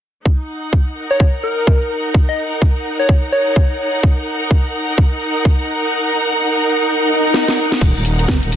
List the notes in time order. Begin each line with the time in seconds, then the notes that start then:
0.25 D#4, kick
0.46 F#5
0.73 kick
0.97 A#4
1.11 C#5
1.20 C#5, kick
1.43 A#4
1.67 kick
2.14 kick
2.29 D#5
2.62 kick
2.99 C#5
3.09 kick
3.32 C#5
3.56 kick
4.03 kick
4.51 kick
4.98 kick
5.45 kick
6.87 swell
7.34 snare
7.48 snare
7.72 snare
7.81 D#1, kick, closed hi-hat, crash
7.96 D#1
8.05 open hi-hat
8.19 closed hi-hat
8.28 F#1, kick, snare, closed hi-hat
8.43 D#1, closed hi-hat
8.52 open hi-hat